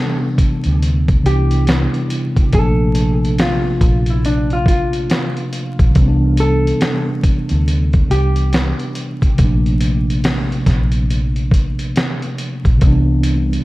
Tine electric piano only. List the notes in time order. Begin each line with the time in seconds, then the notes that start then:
Already playing: C3 E3 G3 B3 D4
1.22 C3 E3 G3 B3
1.27 D4
1.34 E4
2.48 C3 F3
2.53 A3 A#3
2.58 D4
5.91 C3 E3
5.97 G3 B3
6.01 C#4
6.08 D4
9.34 C3 F3
9.39 A3 A#3
9.44 D4
12.77 C3 E3
12.82 G3 B3
12.87 D4